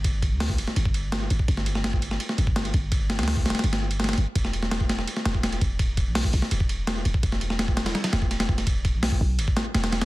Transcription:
<<
  \new Staff \with { instrumentName = "808-style bass" } { \clef bass \time 4/4 \key e \minor \tempo 4 = 167 g,,8. d,8. d,,16 r16 g,,4. g,,16 r16 | g,,2 r8 g,,4 g,,8~ | g,,8. d,8. d,,16 r16 g,,4. g,,16 r16 | e,,2 r8 e,,4 e,,8~ |
e,,8. b,,8. b,,16 r16 e,,4. e,,16 r16 | e,,2 r8 e,,4 e,,8~ | e,,8. b,,8. b,,8 g,,16 r8. e,,4 | }
  \new DrumStaff \with { instrumentName = "Drums" } \drummode { \time 4/4 <bd cymr>8 <bd cymr>8 <hho sn>16 bd16 cymr16 sn16 cymr16 bd16 cymr8 <cymr sn>8 cymr16 bd16 | <bd cymr>16 sn16 cymr16 sn16 <cymr sn>16 bd16 cymr16 sn16 cymr16 sn16 cymr16 bd16 <cymr sn>16 cymr16 <bd cymr>8 | <bd cymr>8 <cymr sn>16 <cymr sn>32 <cymr sn>32 <hho sn>16 bd16 <cymr sn>32 <cymr sn>32 <cymr sn>32 <cymr sn>32 cymr16 <cymr sn>8 cymr16 <cymr sn>32 <cymr sn>32 <cymr sn>32 <cymr sn>32 cymr8 | <bd cymr>16 sn16 cymr16 sn16 <cymr sn>16 bd16 <cymr sn>16 sn16 cymr16 sn16 <cymr sn>16 bd16 <cymr sn>16 cymr16 <bd cymr>8 |
<bd cymr>8 <bd cymr>8 <hho sn>16 bd16 cymr16 sn16 cymr16 bd16 cymr8 <cymr sn>8 cymr16 bd16 | <bd cymr>16 sn16 cymr16 sn16 <cymr sn>16 bd16 <cymr sn>16 <cymr sn>16 <cymr sn>16 <cymr sn>16 <cymr sn>16 bd16 <cymr sn>16 <cymr sn>16 bd16 <cymr sn>16 | <bd cymr>8 <bd cymr>8 <hho sn>16 bd8. cymr16 bd16 <cymr sn>8 <cymr sn>16 <cymr sn>16 <cymr sn>16 <cymr sn>16 | }
>>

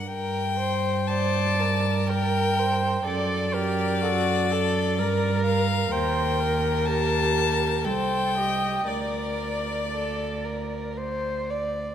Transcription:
<<
  \new Staff \with { instrumentName = "Violin" } { \time 3/4 \key g \minor \tempo 4 = 60 g''4 a''4 g''4 | d''2~ d''8 f''8 | g''4 a''4 g''4 | d''2 r4 | }
  \new Staff \with { instrumentName = "Viola" } { \time 3/4 \key g \minor r4 d''4 bes'8 c''8 | d''8 bes'8 a'8 a'8 bes'4 | c''8 bes'8 g'4 c''8 ees''8 | d''2~ d''8 r8 | }
  \new Staff \with { instrumentName = "Violin" } { \time 3/4 \key g \minor bes'8 c''8 c''8 bes'4. | a'8 g'8 fis'8 a'8 bes'4 | bes'2 a'8 g'8 | bes'4 a'8 bes'8 c''8 d''8 | }
  \new Staff \with { instrumentName = "Cello" } { \clef bass \time 3/4 \key g \minor g,2. | fis,2 g,4 | ees,2 c,4 | d,2. | }
>>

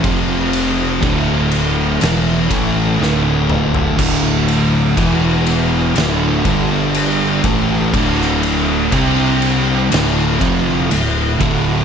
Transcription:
<<
  \new Staff \with { instrumentName = "String machine" } { \time 4/4 \key d \minor \tempo 4 = 61 << { g'4 e'2. | e'2~ e'8 a'4 e'8~ | e'4 d'4 e'2 | } \\ { <f c'>4 <d a>2. | <d a>4 <e b>4 <d a>8 <g d'>4 <d a>8~ | <d a>4 <c g>4 <d a>2 | } >> }
  \new Staff \with { instrumentName = "Distorted electric guitar" } { \clef bass \time 4/4 \key d \minor <f, c f>4 <d, a, d>4 <e, b, e>8 <a, e a>8 <d, a, d>4 | <d, a, d>4 <e, b, e>4 <d, a, d>8 <g, d g>4 <a, e a>8 | <d, a, d>4 <c g c'>4 <d, a, d>8 <f, c f>8 <d, a,>8 <d, a, d>8 | }
  \new Staff \with { instrumentName = "Distorted electric guitar" } { \clef bass \time 4/4 \key d \minor <f, c f>4 <d, a, d>4 <e, b, e>8 <a, e a>8 <d, a, d>4 | <d, a, d>4 <e, b, e>4 <d, a, d>8 <g, d g>4 <a, e a>8 | <d, a, d>4 <c g c'>4 <d, a, d>8 <f, c f>8 <d, a,>8 <d, a, d>8 | }
  \new Staff \with { instrumentName = "Overdriven electric guitar" } { \clef bass \time 4/4 \key d \minor <f, c f>4 <d, a, d>4 <e, b, e>8 <a, e a>8 <d, a, d>4 | <d, a, d>4 <e, b, e>4 <d, a, d>8 <g, d g>4 <a, e a>8 | <d, a, d>4 <c g c'>4 <d, a, d>8 <f, c f>8 <d, a,>8 <d, a, d>8 | }
  \new Staff \with { instrumentName = "Picked electric bass" } { \clef bass \time 4/4 \key d \minor f,,4 d,,4 e,,8 a,,8 d,,4 | d,,4 e,,4 d,,8 g,,4 a,,8 | d,,4 c,4 d,,8 f,,8 d,,8 d,,8 | }
  \new DrumStaff \with { instrumentName = "Drums" } \drummode { \time 4/4 <bd cymr>8 cymr8 <bd cymr>8 cymr8 <cymr sn>8 <bd cymr>8 sn8 toml16 tomfh16 | <cymc bd>8 cymr8 <bd cymr>8 cymr8 <cymr sn>8 <bd cymr>8 cymr8 <bd cymr>8 | <bd cymr>16 sn16 cymr8 <bd cymr>8 cymr8 <cymr sn>8 <bd cymr>8 cymr8 <bd cymr>8 | }
>>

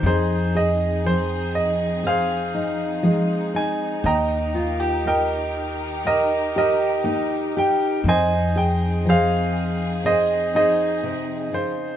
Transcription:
<<
  \new Staff \with { instrumentName = "Grand piano" } { \time 4/4 \key f \minor \tempo 4 = 60 << { c''8 ees''8 c''8 ees''8 f''4. aes''8 | bes''4 g''4 ees''8 ees''4 g''8 | aes''8 g''8 f''4 ees''8 ees''4 c''8 | } \\ { <ees' aes'>2 <aes' c''>2 | <ees'' g''>4 <bes' ees''>4 <g' bes'>8 <g' bes'>4. | <c'' ees''>4 <aes' c''>4 <aes' c''>8 <aes' c''>4. | } >> }
  \new Staff \with { instrumentName = "String section" } { \time 4/4 \key f \minor << { <f aes'>1 | <ees g' bes'>1 | <f aes'>1 | } \\ { <c' ees'>1~ | <c' ees'>1 | c'1 | } >> }
  \new Staff \with { instrumentName = "Steel-string acoustic guitar" } { \time 4/4 \key f \minor << { r8 aes'2 ees'8 aes8 ees'8 | r8 f'16 g'4.~ g'16 g'8 ees'8 g'8 | r8 aes'2 ees'4. | } \\ { f,4 f4 c4 f4 | ees4 bes4 bes,4 bes4 | f,4 f4 c4 c8 des8 | } >> }
  \new Staff \with { instrumentName = "Upright bass" } { \clef bass \time 4/4 \key f \minor f,1 | ees,1 | f,1 | }
>>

